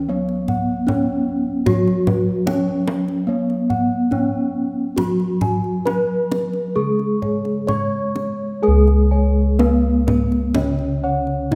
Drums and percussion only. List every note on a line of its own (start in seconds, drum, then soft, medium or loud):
0.29 kendang slap soft
0.48 kendang slap soft
0.48 kendang low medium
0.88 kendang slap soft
0.88 kendang high medium
0.88 kendang low medium
1.66 kendang high medium
1.66 kendang low medium
1.87 kendang slap soft
2.07 kendang high medium
2.07 kendang low medium
2.47 kendang slap soft
2.47 kendang high medium
2.88 kendang high medium
3.08 kendang slap soft
3.50 kendang slap soft
3.70 kendang slap soft
3.70 kendang low medium
4.12 kendang slap soft
4.12 kendang low soft
4.98 kendang high soft
4.98 kendang low medium
5.20 kendang slap soft
5.41 kendang slap soft
5.41 kendang high soft
5.41 kendang low medium
5.64 kendang slap soft
5.87 kendang slap soft
5.87 kendang high medium
6.32 kendang high medium
6.53 kendang slap soft
6.99 kendang slap soft
7.22 kendang slap soft
7.22 kendang low soft
7.45 kendang slap soft
7.68 kendang slap soft
7.68 kendang high soft
7.68 kendang low medium
8.16 kendang slap soft
8.16 kendang high soft
8.88 kendang slap soft
9.59 kendang high medium
10.08 kendang high medium
10.08 kendang low medium
10.32 kendang slap soft
10.55 kendang high medium
10.55 kendang low medium
10.79 kendang slap soft
11.27 kendang slap soft
11.52 kendang high medium
11.52 kendang low medium